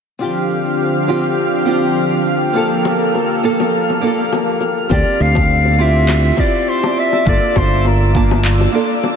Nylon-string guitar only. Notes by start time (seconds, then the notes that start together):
0.19 C4 D4 F4 G4
1.08 C4 D4 F4 G4
1.65 C4 D4 F4 G4
2.53 A#3 D4 F4 A4
3.43 A#3 D4 F4 A4
4.01 A#3 D4 F4 A4
4.89 C4 D4 F4 G4
5.78 C4 E4 F4 G4
6.37 C4 E4 F4 G4
7.25 A#3 D4 F4 A4
8.15 A#3 D4 F4 A5
8.72 A#3 D4 F4 A4